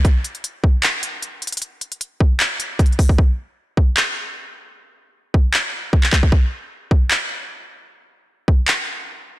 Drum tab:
HH |x-----------x-----x-----x-----------------------x-----------x-----------x-----------x--x--x--x--|x-----------x-----x-----x-----------------------x-----------x-----------x---x---x---o-----------|------------------------------------------------------------------------------------------------|------------------------------------------------------------------------------------------------|
CP |------------------------------------------------x-----------------------------------------------|------------------------------------------------x-----------------------------------------------|------------------------------------------------x-----------------------------------------------|------------------------------------------------x-----------------------------x-----x-----------|
BD |o-----------------------------------o-----------------------------------------------------------|------------------------------------o-----------------------------------o-----------o-----o-----|o-----------------------------------o-----------------------------------------------------------|------------------------------------o-----------------------------------o-----------o-----o-----|

HH |------------------------------------------------------------------------------------------------|------------------------------------------------------------------------------------------------|
CP |------------------------------------------------x-----------------------------------------------|------------------------------------------------x-----------------------------------------------|
BD |o-----------------------------------o-----------------------------------------------------------|------------------------------------o-----------------------------------------------------------|